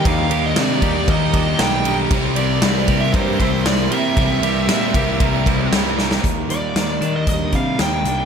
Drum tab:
RD |x-x-x-x-x-x-x-x-|x-x-x-x-x-x-x-x-|x-x-x-x-x-x-x---|----------------|
HH |----------------|----------------|----------------|x-x-x-x-x-x-x-x-|
SD |----o-------o---|----o-------o---|----o-------o-oo|----o-------o---|
BD |o-----o-o-o-----|o-----o-o-o-----|o-----o-o-o-----|o-------o-o-----|